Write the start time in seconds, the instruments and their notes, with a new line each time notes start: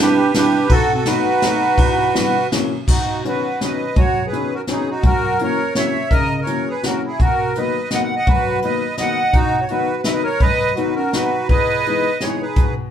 Already playing: clarinet D4
0.00 upright piano G3 B3 D4 E4, accordion G4 B4
0.34 upright piano G3 B3 D4 E4, clarinet D4, accordion G4 B4, snare, ride
0.68 upright piano B2, clarinet D#4, accordion F#4 A4, kick, ride
0.94 clarinet C4, accordion F#4 A4
1.05 upright piano F#3 A3 B3 D#4, clarinet D#4, accordion F#4 B4, snare, ride
1.42 upright piano F#3 A3 B3 D#4, snare, ride
1.78 upright piano E2, kick, ride
2.14 upright piano E3 G3 B3 D4, snare, ride
2.52 upright piano E3 F#3 A#3 C#4, snare, ride
2.88 upright piano B2, accordion D#4 F#4, kick, crash
3.25 upright piano D#3 F#3 B3 C#4, accordion F#4 B4, closed hi-hat
3.60 upright piano D#3 F#3 B3 C#4, accordion B4 D#5, snare, closed hi-hat
3.96 upright piano F#2, accordion F#4 C#5, kick, closed hi-hat
4.26 accordion G#4 B4
4.32 upright piano D#3 F#3 B3 C#4, closed hi-hat
4.54 accordion F#4 A#4
4.67 upright piano D#3 F#3 B3 C#4, accordion D#4, snare, closed hi-hat
4.72 accordion G#4
4.89 accordion D#4 F#4
5.03 upright piano F#2, accordion F#4 A#4, kick, closed hi-hat
5.39 upright piano E3 F#3 A#3 C#4, accordion A#4, closed hi-hat
5.44 accordion C#5
5.75 upright piano E3 F#3 A#3 C#4, accordion C#5 E5, snare, closed hi-hat
6.11 upright piano C#3, accordion A#4 D#5, kick, closed hi-hat
6.41 accordion A#4 C#5
6.46 upright piano E3 F#3 A#3 C#4, closed hi-hat
6.68 accordion G#4 B4
6.83 upright piano E3 F#3 A#3 C#4, accordion F#4 A#4, snare, closed hi-hat
7.05 accordion E4 G#4
7.20 upright piano B2, accordion F#4 A#4, kick, closed hi-hat
7.55 upright piano D#3 F#3 A#3 B3, accordion B4 D#5, closed hi-hat
7.91 upright piano D#3 F#3 A#3 B3, accordion D#5 F#5, snare, closed hi-hat
8.03 accordion F#5
8.16 accordion D#5 F#5
8.27 upright piano F#2, accordion F#4 B4, kick, closed hi-hat
8.61 upright piano D#3 F#3 A#3 B3, accordion B4 D#5, closed hi-hat
8.98 upright piano D#3 F#3 A#3 B3, accordion D#5 F#5, snare, closed hi-hat
9.33 upright piano B2, accordion D#4 F#4, kick, closed hi-hat
9.61 accordion C#5
9.67 upright piano D#3 F#3 B3 D#4, accordion F#4 B4, closed hi-hat
10.03 upright piano D#3 F#3 B3 D#4, accordion B4 D#5 E5, snare, closed hi-hat
10.12 accordion B4 D#5
10.23 accordion A#4 C#5
10.40 upright piano F#2, accordion B4 D#5, kick, closed hi-hat
10.75 upright piano D#3 F#3 B3 D#4, clarinet D#4, accordion F#4 B4, closed hi-hat
10.95 clarinet C#4, accordion F#4 A#4
11.13 upright piano D#3 F#3 B3 D#4, clarinet D#4, accordion F#4 B4, snare, closed hi-hat
11.49 upright piano E2, clarinet G#4, accordion B4 D#5, kick, closed hi-hat
11.86 upright piano E3 G#3 B3 D#4, closed hi-hat
12.20 upright piano E3 G#3 B3 D#4, clarinet E4, accordion G#4 C#5, snare, closed hi-hat
12.41 clarinet D#4, accordion G#4 B4
12.56 upright piano B2, kick, closed hi-hat